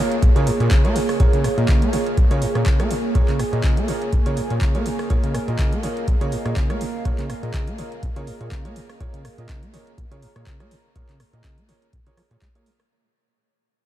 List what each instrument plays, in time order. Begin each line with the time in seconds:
Already playing: analog synth pad A#3 G#4 C#5, ambient pad A#3 G#4 C#5 F5
0.00 grand piano A#3 F4 G#4 C#5
0.12 closed hi-hat
0.22 acid bass A#2, kick, closed hi-hat
0.36 acid bass C#3, grand piano A#3 F4 G#4 C#5, closed hi-hat
0.47 acid bass G#2, open hi-hat
0.60 acid bass A#2, grand piano A#3 F4 G#4 C#5, closed hi-hat
0.71 acid bass C#3, kick, clap, closed hi-hat
0.85 acid bass A#3, grand piano A#3 F4 G#4 C#5, closed hi-hat
0.96 acid bass A#2, open hi-hat
1.09 cross-stick, open hi-hat
1.20 acid bass A#2, grand piano A#3 F4 G#4 C#5, kick, closed hi-hat
1.33 acid bass C#3, closed hi-hat
1.44 acid bass G#2, cross-stick, open hi-hat
1.49 ambient pad G#5
1.58 acid bass A#2, grand piano A#3 F4 G#4 D#5, closed hi-hat
1.69 acid bass C#3, kick, clap, closed hi-hat
1.82 acid bass A#3, closed hi-hat
1.93 acid bass A#2, grand piano A#3 F4 G#4 C#5, open hi-hat
2.06 closed hi-hat
2.17 acid bass A#2, kick, closed hi-hat
2.31 acid bass C#3, grand piano A#3 F4 G#4 C#5, closed hi-hat
2.42 acid bass G#2, open hi-hat
2.55 acid bass A#2, grand piano A#3 F4 G#4 C#5, cross-stick, closed hi-hat
2.66 acid bass C#3, kick, clap, closed hi-hat
2.80 acid bass A#3, grand piano A#3 F4 G#4 C#5, cross-stick, closed hi-hat
2.91 acid bass A#2, open hi-hat
3.15 acid bass A#2, grand piano A#3 F4 G#4 C#5, kick, closed hi-hat
3.29 acid bass C#3, clap, closed hi-hat
3.39 acid bass G#2, cross-stick, open hi-hat
3.53 acid bass A#2, grand piano A#3 F4 G#4 D#5, closed hi-hat
3.64 acid bass C#3, kick, clap, closed hi-hat
3.77 acid bass A#3, closed hi-hat
3.88 acid bass A#2, grand piano A#3 F4 G#4 C#5, open hi-hat
4.02 closed hi-hat
4.13 acid bass A#2, kick, closed hi-hat
4.26 acid bass C#3, grand piano A#3 F4 G#4 C#5, closed hi-hat
4.37 acid bass G#2, open hi-hat
4.50 acid bass A#2, grand piano A#3 F4 G#4 C#5, closed hi-hat
4.61 acid bass C#3, kick, clap, closed hi-hat
4.66 ambient pad D#5
4.75 acid bass A#3, grand piano A#3 F4 G#4 C#5, closed hi-hat
4.86 acid bass A#2, open hi-hat
4.99 cross-stick, open hi-hat
5.10 acid bass A#2, grand piano A#3 F4 G#4 C#5, analog synth pad A#4, kick, closed hi-hat
5.24 acid bass C#3, closed hi-hat
5.35 acid bass G#2, cross-stick, open hi-hat
5.39 ambient pad F5
5.48 acid bass A#2, grand piano A#3 F4 G#4 D#5, closed hi-hat
5.59 acid bass C#3, kick, clap, closed hi-hat
5.72 acid bass A#3, closed hi-hat
5.83 acid bass A#2, grand piano A#3 F4 G#4 C#5, open hi-hat
5.97 closed hi-hat
6.08 acid bass A#2, kick, closed hi-hat
6.21 acid bass C#3, grand piano A#3 F4 G#4 C#5, closed hi-hat
6.32 acid bass G#2, open hi-hat
6.46 acid bass A#2, grand piano A#3 F4 G#4 C#5, cross-stick, closed hi-hat
6.57 acid bass C#3, kick, clap, closed hi-hat
6.70 acid bass A#3, grand piano A#3 F4 G#4 C#5, cross-stick, closed hi-hat
6.81 acid bass A#2, open hi-hat
7.05 acid bass A#2, grand piano A#3 F4 G#4 C#5, kick, closed hi-hat
7.19 acid bass C#3, clap, closed hi-hat
7.30 acid bass G#2, cross-stick, open hi-hat
7.43 acid bass A#2, grand piano A#3 F4 G#4 D#5, closed hi-hat
7.54 acid bass C#3, kick, clap, closed hi-hat
7.67 acid bass A#3, closed hi-hat
7.78 acid bass A#2, grand piano A#3 F4 G#4 C#5, open hi-hat
7.92 closed hi-hat
8.03 acid bass A#2, kick, closed hi-hat
8.16 acid bass C#3, grand piano A#3 F4 G#4 C#5, closed hi-hat
8.27 acid bass G#2, open hi-hat
8.41 acid bass A#2, grand piano A#3 F4 G#4 C#5, closed hi-hat
8.52 acid bass C#3, kick, clap, closed hi-hat
8.65 acid bass A#3, grand piano A#3 F4 G#4 C#5, closed hi-hat
8.76 acid bass A#2, open hi-hat
8.89 cross-stick, open hi-hat
9.00 acid bass A#2, grand piano A#3 F4 G#4 C#5, kick, closed hi-hat
9.14 acid bass C#3, closed hi-hat
9.25 acid bass G#2, cross-stick, open hi-hat
9.30 ambient pad A#5
9.38 acid bass A#2, grand piano A#3 F4 G#4 D#5, closed hi-hat
9.49 acid bass C#3, kick, clap, closed hi-hat
9.63 acid bass A#3, closed hi-hat
9.74 acid bass A#2, grand piano A#3 F4 G#4 C#5, open hi-hat
9.87 closed hi-hat
9.98 acid bass A#2, kick, closed hi-hat
10.11 acid bass C#3, grand piano A#3 F4 G#4 C#5, closed hi-hat
10.22 acid bass G#2, open hi-hat
10.36 acid bass A#2, grand piano A#3 F4 G#4 C#5, cross-stick, closed hi-hat
10.47 acid bass C#3, kick, clap, closed hi-hat
10.60 grand piano A#3 F4 G#4 C#5, acid bass A#3, cross-stick, closed hi-hat
10.71 acid bass A#2, open hi-hat
10.96 acid bass A#2, grand piano A#3 F4 G#4 C#5, kick, closed hi-hat
11.09 acid bass C#3, clap, closed hi-hat
11.20 acid bass G#2, cross-stick, open hi-hat
11.33 acid bass A#2, grand piano A#3 F4 G#4 D#5, closed hi-hat
11.44 acid bass C#3, kick, clap, closed hi-hat
11.58 acid bass A#3, closed hi-hat
11.69 acid bass A#2, grand piano A#3 F4 G#4 C#5, open hi-hat
11.82 closed hi-hat
11.93 acid bass A#2, kick, closed hi-hat
12.07 acid bass C#3, grand piano A#3 F4 G#4 C#5, closed hi-hat
12.17 acid bass F3, cross-stick, open hi-hat
12.31 acid bass A#2, grand piano A#3 F4 G#4 C#5, closed hi-hat
12.42 acid bass G#3, kick, clap, closed hi-hat
12.55 acid bass A#3, grand piano A#3 F4 G#4 C#5, closed hi-hat
12.66 acid bass G#3, open hi-hat
12.80 cross-stick, open hi-hat